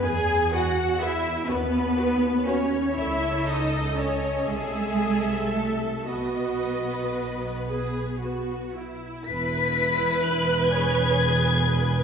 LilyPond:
<<
  \new Staff \with { instrumentName = "Violin section" } { \time 6/8 \key e \major \tempo 4. = 40 gis''8 fis''8 e''8 b'4 cis''8 | e''8 dis''8 cis''8 gis'4 a'8 | b'2~ b'8 r8 | b'''4 fis'''8 gis'''4. | }
  \new Staff \with { instrumentName = "Violin section" } { \time 6/8 \key e \major << { gis''8 fis''8 e''8 b'4 cis''8 | e''8 dis''8 cis''8 gis'4 a'8 | b'2~ b'8 r8 | b'4. cis''8 b'8 b'8 | } \\ { r2. | r2. | r2. | e'4. gis'4. | } >> }
  \new Staff \with { instrumentName = "Viola section" } { \time 6/8 \key e \major << { b'8 b'8 b'8 b'8 b'8 b'8 | cis''8. dis''8. e''4. | dis''4. gis'8 fis'8 e'8 | b'2. | } \\ { gis'8 gis'8 gis'8 fis'8 fis'8 fis'8 | a'4. a'4. | fis'4. r4. | r2. | } >> }
  \new Staff \with { instrumentName = "Cello section" } { \time 6/8 \key e \major gis'8 fis'8 e'8 b4 cis'8 | e'8 dis'8 cis'8 gis4 a8 | b2~ b8 r8 | e,2. | }
  \new Staff \with { instrumentName = "Double bass section" } { \clef bass \time 6/8 \key e \major e,4. dis,4. | cis,4. c,4. | b,,2. | e,,2. | }
>>